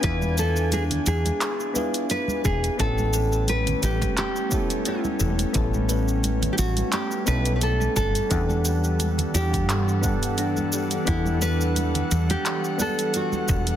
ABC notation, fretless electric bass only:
X:1
M:4/4
L:1/8
Q:"Swing 16ths" 1/4=87
K:Edor
V:1 name="Fretless electric bass" clef=bass
E,,3 E,, z3 E,,, | A,,,3 A,,, z3 E,,, | A,,,3 A,,, z B,,,2 G,,, | E,,3 E,, G,,4 |
E,,3 E,, z3 E,,, |]